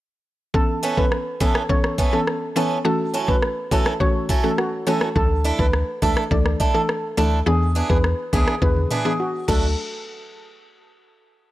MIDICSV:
0, 0, Header, 1, 6, 480
1, 0, Start_track
1, 0, Key_signature, 2, "major"
1, 0, Tempo, 576923
1, 451, Time_signature, 4, 2, 24, 8
1, 9581, End_track
2, 0, Start_track
2, 0, Title_t, "Steel pan"
2, 0, Program_c, 0, 114
2, 452, Note_on_c, 0, 69, 99
2, 552, Note_off_c, 0, 69, 0
2, 812, Note_on_c, 0, 71, 76
2, 912, Note_off_c, 0, 71, 0
2, 1172, Note_on_c, 0, 69, 75
2, 1272, Note_off_c, 0, 69, 0
2, 1412, Note_on_c, 0, 73, 75
2, 1512, Note_off_c, 0, 73, 0
2, 1772, Note_on_c, 0, 69, 74
2, 1872, Note_off_c, 0, 69, 0
2, 2371, Note_on_c, 0, 69, 84
2, 2471, Note_off_c, 0, 69, 0
2, 2732, Note_on_c, 0, 71, 77
2, 2832, Note_off_c, 0, 71, 0
2, 3092, Note_on_c, 0, 69, 84
2, 3192, Note_off_c, 0, 69, 0
2, 3333, Note_on_c, 0, 73, 76
2, 3432, Note_off_c, 0, 73, 0
2, 3691, Note_on_c, 0, 69, 78
2, 3791, Note_off_c, 0, 69, 0
2, 3813, Note_on_c, 0, 66, 78
2, 3912, Note_off_c, 0, 66, 0
2, 4051, Note_on_c, 0, 69, 74
2, 4151, Note_off_c, 0, 69, 0
2, 4291, Note_on_c, 0, 69, 97
2, 4391, Note_off_c, 0, 69, 0
2, 4652, Note_on_c, 0, 71, 76
2, 4752, Note_off_c, 0, 71, 0
2, 5011, Note_on_c, 0, 69, 81
2, 5111, Note_off_c, 0, 69, 0
2, 5252, Note_on_c, 0, 74, 75
2, 5352, Note_off_c, 0, 74, 0
2, 5612, Note_on_c, 0, 69, 74
2, 5712, Note_off_c, 0, 69, 0
2, 6211, Note_on_c, 0, 68, 82
2, 6311, Note_off_c, 0, 68, 0
2, 6572, Note_on_c, 0, 71, 73
2, 6672, Note_off_c, 0, 71, 0
2, 6933, Note_on_c, 0, 68, 82
2, 7032, Note_off_c, 0, 68, 0
2, 7172, Note_on_c, 0, 71, 75
2, 7272, Note_off_c, 0, 71, 0
2, 7531, Note_on_c, 0, 68, 77
2, 7631, Note_off_c, 0, 68, 0
2, 7653, Note_on_c, 0, 66, 77
2, 7752, Note_off_c, 0, 66, 0
2, 7892, Note_on_c, 0, 69, 83
2, 8115, Note_off_c, 0, 69, 0
2, 9581, End_track
3, 0, Start_track
3, 0, Title_t, "Steel-string acoustic guitar"
3, 0, Program_c, 1, 25
3, 688, Note_on_c, 1, 52, 81
3, 692, Note_on_c, 1, 59, 94
3, 694, Note_on_c, 1, 61, 92
3, 697, Note_on_c, 1, 69, 92
3, 862, Note_off_c, 1, 52, 0
3, 864, Note_off_c, 1, 59, 0
3, 865, Note_off_c, 1, 61, 0
3, 867, Note_off_c, 1, 69, 0
3, 1168, Note_on_c, 1, 52, 83
3, 1171, Note_on_c, 1, 59, 87
3, 1174, Note_on_c, 1, 61, 89
3, 1176, Note_on_c, 1, 69, 88
3, 1342, Note_off_c, 1, 52, 0
3, 1344, Note_off_c, 1, 59, 0
3, 1345, Note_off_c, 1, 61, 0
3, 1347, Note_off_c, 1, 69, 0
3, 1648, Note_on_c, 1, 52, 76
3, 1651, Note_on_c, 1, 59, 79
3, 1654, Note_on_c, 1, 61, 86
3, 1657, Note_on_c, 1, 69, 86
3, 1822, Note_off_c, 1, 52, 0
3, 1824, Note_off_c, 1, 59, 0
3, 1825, Note_off_c, 1, 61, 0
3, 1827, Note_off_c, 1, 69, 0
3, 2129, Note_on_c, 1, 52, 80
3, 2132, Note_on_c, 1, 59, 83
3, 2135, Note_on_c, 1, 61, 92
3, 2137, Note_on_c, 1, 69, 97
3, 2303, Note_off_c, 1, 52, 0
3, 2304, Note_off_c, 1, 59, 0
3, 2306, Note_off_c, 1, 61, 0
3, 2307, Note_off_c, 1, 69, 0
3, 2609, Note_on_c, 1, 54, 76
3, 2612, Note_on_c, 1, 61, 85
3, 2615, Note_on_c, 1, 64, 88
3, 2618, Note_on_c, 1, 69, 99
3, 2783, Note_off_c, 1, 54, 0
3, 2785, Note_off_c, 1, 61, 0
3, 2786, Note_off_c, 1, 64, 0
3, 2787, Note_off_c, 1, 69, 0
3, 3090, Note_on_c, 1, 54, 77
3, 3093, Note_on_c, 1, 61, 81
3, 3096, Note_on_c, 1, 64, 90
3, 3098, Note_on_c, 1, 69, 90
3, 3263, Note_off_c, 1, 54, 0
3, 3265, Note_off_c, 1, 61, 0
3, 3266, Note_off_c, 1, 64, 0
3, 3268, Note_off_c, 1, 69, 0
3, 3569, Note_on_c, 1, 54, 84
3, 3573, Note_on_c, 1, 61, 84
3, 3575, Note_on_c, 1, 64, 82
3, 3578, Note_on_c, 1, 69, 91
3, 3743, Note_off_c, 1, 54, 0
3, 3745, Note_off_c, 1, 61, 0
3, 3746, Note_off_c, 1, 64, 0
3, 3747, Note_off_c, 1, 69, 0
3, 4049, Note_on_c, 1, 54, 80
3, 4052, Note_on_c, 1, 61, 79
3, 4055, Note_on_c, 1, 64, 81
3, 4057, Note_on_c, 1, 69, 82
3, 4223, Note_off_c, 1, 54, 0
3, 4224, Note_off_c, 1, 61, 0
3, 4226, Note_off_c, 1, 64, 0
3, 4227, Note_off_c, 1, 69, 0
3, 4529, Note_on_c, 1, 57, 88
3, 4533, Note_on_c, 1, 62, 89
3, 4536, Note_on_c, 1, 64, 100
3, 4538, Note_on_c, 1, 69, 103
3, 4703, Note_off_c, 1, 57, 0
3, 4705, Note_off_c, 1, 62, 0
3, 4706, Note_off_c, 1, 64, 0
3, 4707, Note_off_c, 1, 69, 0
3, 5009, Note_on_c, 1, 57, 81
3, 5013, Note_on_c, 1, 62, 77
3, 5015, Note_on_c, 1, 64, 88
3, 5018, Note_on_c, 1, 69, 91
3, 5183, Note_off_c, 1, 57, 0
3, 5185, Note_off_c, 1, 62, 0
3, 5186, Note_off_c, 1, 64, 0
3, 5187, Note_off_c, 1, 69, 0
3, 5489, Note_on_c, 1, 57, 88
3, 5492, Note_on_c, 1, 62, 89
3, 5495, Note_on_c, 1, 64, 88
3, 5498, Note_on_c, 1, 69, 94
3, 5663, Note_off_c, 1, 57, 0
3, 5665, Note_off_c, 1, 62, 0
3, 5666, Note_off_c, 1, 64, 0
3, 5667, Note_off_c, 1, 69, 0
3, 5968, Note_on_c, 1, 57, 86
3, 5971, Note_on_c, 1, 62, 89
3, 5974, Note_on_c, 1, 64, 80
3, 5977, Note_on_c, 1, 69, 84
3, 6142, Note_off_c, 1, 57, 0
3, 6144, Note_off_c, 1, 62, 0
3, 6145, Note_off_c, 1, 64, 0
3, 6147, Note_off_c, 1, 69, 0
3, 6449, Note_on_c, 1, 52, 72
3, 6452, Note_on_c, 1, 59, 74
3, 6455, Note_on_c, 1, 62, 84
3, 6457, Note_on_c, 1, 68, 82
3, 6623, Note_off_c, 1, 52, 0
3, 6624, Note_off_c, 1, 59, 0
3, 6626, Note_off_c, 1, 62, 0
3, 6627, Note_off_c, 1, 68, 0
3, 6929, Note_on_c, 1, 52, 82
3, 6933, Note_on_c, 1, 59, 85
3, 6936, Note_on_c, 1, 62, 82
3, 6938, Note_on_c, 1, 68, 85
3, 7103, Note_off_c, 1, 52, 0
3, 7105, Note_off_c, 1, 59, 0
3, 7106, Note_off_c, 1, 62, 0
3, 7107, Note_off_c, 1, 68, 0
3, 7409, Note_on_c, 1, 52, 78
3, 7413, Note_on_c, 1, 59, 82
3, 7415, Note_on_c, 1, 62, 85
3, 7417, Note_on_c, 1, 68, 89
3, 7583, Note_off_c, 1, 52, 0
3, 7585, Note_off_c, 1, 59, 0
3, 7586, Note_off_c, 1, 62, 0
3, 7587, Note_off_c, 1, 68, 0
3, 7888, Note_on_c, 1, 57, 74
3, 7892, Note_on_c, 1, 62, 76
3, 7896, Note_on_c, 1, 66, 78
3, 7900, Note_on_c, 1, 69, 85
3, 8034, Note_off_c, 1, 57, 0
3, 8036, Note_off_c, 1, 62, 0
3, 8038, Note_off_c, 1, 66, 0
3, 8040, Note_off_c, 1, 69, 0
3, 9581, End_track
4, 0, Start_track
4, 0, Title_t, "Synth pluck"
4, 0, Program_c, 2, 84
4, 449, Note_on_c, 2, 52, 86
4, 450, Note_on_c, 2, 59, 83
4, 452, Note_on_c, 2, 61, 85
4, 454, Note_on_c, 2, 69, 100
4, 781, Note_off_c, 2, 52, 0
4, 782, Note_off_c, 2, 59, 0
4, 783, Note_off_c, 2, 61, 0
4, 784, Note_off_c, 2, 69, 0
4, 809, Note_on_c, 2, 52, 75
4, 810, Note_on_c, 2, 59, 73
4, 812, Note_on_c, 2, 61, 71
4, 814, Note_on_c, 2, 69, 85
4, 969, Note_off_c, 2, 52, 0
4, 970, Note_off_c, 2, 59, 0
4, 971, Note_off_c, 2, 61, 0
4, 972, Note_off_c, 2, 69, 0
4, 1169, Note_on_c, 2, 52, 77
4, 1170, Note_on_c, 2, 59, 73
4, 1172, Note_on_c, 2, 61, 68
4, 1174, Note_on_c, 2, 69, 84
4, 1329, Note_off_c, 2, 52, 0
4, 1330, Note_off_c, 2, 59, 0
4, 1331, Note_off_c, 2, 61, 0
4, 1332, Note_off_c, 2, 69, 0
4, 1408, Note_on_c, 2, 52, 94
4, 1410, Note_on_c, 2, 59, 85
4, 1411, Note_on_c, 2, 61, 90
4, 1413, Note_on_c, 2, 69, 104
4, 1741, Note_off_c, 2, 52, 0
4, 1742, Note_off_c, 2, 59, 0
4, 1743, Note_off_c, 2, 61, 0
4, 1743, Note_off_c, 2, 69, 0
4, 1768, Note_on_c, 2, 52, 74
4, 1770, Note_on_c, 2, 59, 71
4, 1772, Note_on_c, 2, 61, 68
4, 1774, Note_on_c, 2, 69, 81
4, 2101, Note_off_c, 2, 52, 0
4, 2102, Note_off_c, 2, 59, 0
4, 2103, Note_off_c, 2, 61, 0
4, 2104, Note_off_c, 2, 69, 0
4, 2127, Note_on_c, 2, 52, 76
4, 2130, Note_on_c, 2, 59, 71
4, 2131, Note_on_c, 2, 61, 68
4, 2133, Note_on_c, 2, 69, 87
4, 2350, Note_off_c, 2, 52, 0
4, 2351, Note_off_c, 2, 59, 0
4, 2352, Note_off_c, 2, 61, 0
4, 2353, Note_off_c, 2, 69, 0
4, 2368, Note_on_c, 2, 52, 91
4, 2369, Note_on_c, 2, 57, 83
4, 2371, Note_on_c, 2, 61, 88
4, 2373, Note_on_c, 2, 66, 104
4, 2701, Note_off_c, 2, 52, 0
4, 2702, Note_off_c, 2, 57, 0
4, 2702, Note_off_c, 2, 61, 0
4, 2703, Note_off_c, 2, 66, 0
4, 2729, Note_on_c, 2, 52, 74
4, 2730, Note_on_c, 2, 57, 72
4, 2732, Note_on_c, 2, 61, 69
4, 2734, Note_on_c, 2, 66, 86
4, 2889, Note_off_c, 2, 52, 0
4, 2890, Note_off_c, 2, 57, 0
4, 2891, Note_off_c, 2, 61, 0
4, 2892, Note_off_c, 2, 66, 0
4, 3089, Note_on_c, 2, 52, 76
4, 3091, Note_on_c, 2, 57, 68
4, 3093, Note_on_c, 2, 61, 71
4, 3094, Note_on_c, 2, 66, 88
4, 3249, Note_off_c, 2, 52, 0
4, 3250, Note_off_c, 2, 57, 0
4, 3251, Note_off_c, 2, 61, 0
4, 3252, Note_off_c, 2, 66, 0
4, 3329, Note_on_c, 2, 52, 95
4, 3330, Note_on_c, 2, 57, 87
4, 3332, Note_on_c, 2, 61, 86
4, 3334, Note_on_c, 2, 66, 103
4, 3661, Note_off_c, 2, 52, 0
4, 3662, Note_off_c, 2, 57, 0
4, 3663, Note_off_c, 2, 61, 0
4, 3664, Note_off_c, 2, 66, 0
4, 3690, Note_on_c, 2, 52, 72
4, 3691, Note_on_c, 2, 57, 69
4, 3693, Note_on_c, 2, 61, 70
4, 3694, Note_on_c, 2, 66, 83
4, 4022, Note_off_c, 2, 52, 0
4, 4023, Note_off_c, 2, 57, 0
4, 4023, Note_off_c, 2, 61, 0
4, 4024, Note_off_c, 2, 66, 0
4, 4050, Note_on_c, 2, 52, 79
4, 4052, Note_on_c, 2, 57, 71
4, 4053, Note_on_c, 2, 61, 69
4, 4055, Note_on_c, 2, 66, 85
4, 4271, Note_off_c, 2, 52, 0
4, 4272, Note_off_c, 2, 57, 0
4, 4273, Note_off_c, 2, 61, 0
4, 4274, Note_off_c, 2, 66, 0
4, 4289, Note_on_c, 2, 52, 94
4, 4290, Note_on_c, 2, 57, 88
4, 4293, Note_on_c, 2, 62, 85
4, 4294, Note_on_c, 2, 69, 101
4, 4621, Note_off_c, 2, 52, 0
4, 4622, Note_off_c, 2, 57, 0
4, 4623, Note_off_c, 2, 62, 0
4, 4624, Note_off_c, 2, 69, 0
4, 4649, Note_on_c, 2, 52, 75
4, 4651, Note_on_c, 2, 57, 69
4, 4652, Note_on_c, 2, 62, 74
4, 4654, Note_on_c, 2, 69, 89
4, 4809, Note_off_c, 2, 52, 0
4, 4810, Note_off_c, 2, 57, 0
4, 4811, Note_off_c, 2, 62, 0
4, 4812, Note_off_c, 2, 69, 0
4, 5009, Note_on_c, 2, 52, 80
4, 5011, Note_on_c, 2, 57, 72
4, 5013, Note_on_c, 2, 62, 73
4, 5014, Note_on_c, 2, 69, 85
4, 5170, Note_off_c, 2, 52, 0
4, 5170, Note_off_c, 2, 57, 0
4, 5171, Note_off_c, 2, 62, 0
4, 5172, Note_off_c, 2, 69, 0
4, 5249, Note_on_c, 2, 52, 101
4, 5251, Note_on_c, 2, 57, 91
4, 5252, Note_on_c, 2, 62, 89
4, 5254, Note_on_c, 2, 69, 105
4, 5581, Note_off_c, 2, 52, 0
4, 5582, Note_off_c, 2, 57, 0
4, 5583, Note_off_c, 2, 62, 0
4, 5584, Note_off_c, 2, 69, 0
4, 5609, Note_on_c, 2, 52, 75
4, 5610, Note_on_c, 2, 57, 70
4, 5612, Note_on_c, 2, 62, 71
4, 5614, Note_on_c, 2, 69, 85
4, 5941, Note_off_c, 2, 52, 0
4, 5942, Note_off_c, 2, 57, 0
4, 5943, Note_off_c, 2, 62, 0
4, 5944, Note_off_c, 2, 69, 0
4, 5969, Note_on_c, 2, 52, 74
4, 5970, Note_on_c, 2, 57, 73
4, 5972, Note_on_c, 2, 62, 71
4, 5974, Note_on_c, 2, 69, 83
4, 6191, Note_off_c, 2, 52, 0
4, 6192, Note_off_c, 2, 57, 0
4, 6192, Note_off_c, 2, 62, 0
4, 6193, Note_off_c, 2, 69, 0
4, 6208, Note_on_c, 2, 52, 95
4, 6210, Note_on_c, 2, 59, 82
4, 6211, Note_on_c, 2, 62, 83
4, 6213, Note_on_c, 2, 68, 99
4, 6541, Note_off_c, 2, 52, 0
4, 6542, Note_off_c, 2, 59, 0
4, 6543, Note_off_c, 2, 62, 0
4, 6543, Note_off_c, 2, 68, 0
4, 6568, Note_on_c, 2, 52, 76
4, 6570, Note_on_c, 2, 59, 72
4, 6572, Note_on_c, 2, 62, 69
4, 6574, Note_on_c, 2, 68, 89
4, 6729, Note_off_c, 2, 52, 0
4, 6730, Note_off_c, 2, 59, 0
4, 6731, Note_off_c, 2, 62, 0
4, 6732, Note_off_c, 2, 68, 0
4, 6928, Note_on_c, 2, 52, 78
4, 6930, Note_on_c, 2, 59, 70
4, 6932, Note_on_c, 2, 62, 69
4, 6934, Note_on_c, 2, 68, 87
4, 7089, Note_off_c, 2, 52, 0
4, 7090, Note_off_c, 2, 59, 0
4, 7091, Note_off_c, 2, 62, 0
4, 7092, Note_off_c, 2, 68, 0
4, 7169, Note_on_c, 2, 52, 95
4, 7171, Note_on_c, 2, 59, 88
4, 7172, Note_on_c, 2, 62, 85
4, 7174, Note_on_c, 2, 68, 106
4, 7501, Note_off_c, 2, 52, 0
4, 7502, Note_off_c, 2, 59, 0
4, 7503, Note_off_c, 2, 62, 0
4, 7504, Note_off_c, 2, 68, 0
4, 7529, Note_on_c, 2, 52, 75
4, 7531, Note_on_c, 2, 59, 68
4, 7533, Note_on_c, 2, 62, 67
4, 7534, Note_on_c, 2, 68, 79
4, 7861, Note_off_c, 2, 52, 0
4, 7862, Note_off_c, 2, 59, 0
4, 7863, Note_off_c, 2, 62, 0
4, 7864, Note_off_c, 2, 68, 0
4, 7887, Note_on_c, 2, 54, 86
4, 7890, Note_on_c, 2, 57, 81
4, 7893, Note_on_c, 2, 62, 80
4, 7896, Note_on_c, 2, 69, 95
4, 8068, Note_off_c, 2, 54, 0
4, 8069, Note_off_c, 2, 57, 0
4, 8071, Note_off_c, 2, 62, 0
4, 8072, Note_off_c, 2, 69, 0
4, 9581, End_track
5, 0, Start_track
5, 0, Title_t, "FM bass"
5, 0, Program_c, 3, 39
5, 4291, Note_on_c, 3, 38, 110
5, 4592, Note_off_c, 3, 38, 0
5, 4652, Note_on_c, 3, 38, 103
5, 4852, Note_off_c, 3, 38, 0
5, 5011, Note_on_c, 3, 37, 90
5, 5111, Note_off_c, 3, 37, 0
5, 5250, Note_on_c, 3, 38, 94
5, 5451, Note_off_c, 3, 38, 0
5, 5973, Note_on_c, 3, 38, 93
5, 6173, Note_off_c, 3, 38, 0
5, 6211, Note_on_c, 3, 40, 100
5, 6512, Note_off_c, 3, 40, 0
5, 6571, Note_on_c, 3, 40, 98
5, 6772, Note_off_c, 3, 40, 0
5, 6931, Note_on_c, 3, 38, 91
5, 7031, Note_off_c, 3, 38, 0
5, 7170, Note_on_c, 3, 40, 104
5, 7371, Note_off_c, 3, 40, 0
5, 7891, Note_on_c, 3, 38, 96
5, 8115, Note_off_c, 3, 38, 0
5, 9581, End_track
6, 0, Start_track
6, 0, Title_t, "Drums"
6, 451, Note_on_c, 9, 36, 110
6, 534, Note_off_c, 9, 36, 0
6, 811, Note_on_c, 9, 36, 84
6, 894, Note_off_c, 9, 36, 0
6, 930, Note_on_c, 9, 37, 91
6, 1013, Note_off_c, 9, 37, 0
6, 1170, Note_on_c, 9, 36, 95
6, 1253, Note_off_c, 9, 36, 0
6, 1290, Note_on_c, 9, 37, 103
6, 1373, Note_off_c, 9, 37, 0
6, 1410, Note_on_c, 9, 36, 96
6, 1493, Note_off_c, 9, 36, 0
6, 1531, Note_on_c, 9, 37, 88
6, 1614, Note_off_c, 9, 37, 0
6, 1651, Note_on_c, 9, 36, 87
6, 1734, Note_off_c, 9, 36, 0
6, 1892, Note_on_c, 9, 37, 90
6, 1975, Note_off_c, 9, 37, 0
6, 2731, Note_on_c, 9, 36, 84
6, 2814, Note_off_c, 9, 36, 0
6, 2849, Note_on_c, 9, 37, 88
6, 2932, Note_off_c, 9, 37, 0
6, 3090, Note_on_c, 9, 36, 94
6, 3174, Note_off_c, 9, 36, 0
6, 3211, Note_on_c, 9, 37, 100
6, 3294, Note_off_c, 9, 37, 0
6, 3330, Note_on_c, 9, 36, 102
6, 3413, Note_off_c, 9, 36, 0
6, 3571, Note_on_c, 9, 36, 87
6, 3655, Note_off_c, 9, 36, 0
6, 3813, Note_on_c, 9, 37, 88
6, 3896, Note_off_c, 9, 37, 0
6, 4169, Note_on_c, 9, 37, 92
6, 4253, Note_off_c, 9, 37, 0
6, 4291, Note_on_c, 9, 36, 109
6, 4375, Note_off_c, 9, 36, 0
6, 4652, Note_on_c, 9, 36, 89
6, 4735, Note_off_c, 9, 36, 0
6, 4771, Note_on_c, 9, 37, 89
6, 4854, Note_off_c, 9, 37, 0
6, 5011, Note_on_c, 9, 36, 92
6, 5094, Note_off_c, 9, 36, 0
6, 5131, Note_on_c, 9, 37, 100
6, 5214, Note_off_c, 9, 37, 0
6, 5250, Note_on_c, 9, 36, 102
6, 5333, Note_off_c, 9, 36, 0
6, 5371, Note_on_c, 9, 37, 91
6, 5455, Note_off_c, 9, 37, 0
6, 5491, Note_on_c, 9, 36, 87
6, 5575, Note_off_c, 9, 36, 0
6, 5733, Note_on_c, 9, 37, 91
6, 5816, Note_off_c, 9, 37, 0
6, 6571, Note_on_c, 9, 36, 84
6, 6655, Note_off_c, 9, 36, 0
6, 6690, Note_on_c, 9, 37, 93
6, 6773, Note_off_c, 9, 37, 0
6, 6931, Note_on_c, 9, 36, 96
6, 7014, Note_off_c, 9, 36, 0
6, 7052, Note_on_c, 9, 37, 99
6, 7135, Note_off_c, 9, 37, 0
6, 7170, Note_on_c, 9, 36, 99
6, 7172, Note_on_c, 9, 48, 53
6, 7254, Note_off_c, 9, 36, 0
6, 7255, Note_off_c, 9, 48, 0
6, 7292, Note_on_c, 9, 48, 52
6, 7375, Note_off_c, 9, 48, 0
6, 7412, Note_on_c, 9, 47, 64
6, 7495, Note_off_c, 9, 47, 0
6, 7891, Note_on_c, 9, 36, 102
6, 7891, Note_on_c, 9, 49, 80
6, 7975, Note_off_c, 9, 36, 0
6, 7975, Note_off_c, 9, 49, 0
6, 9581, End_track
0, 0, End_of_file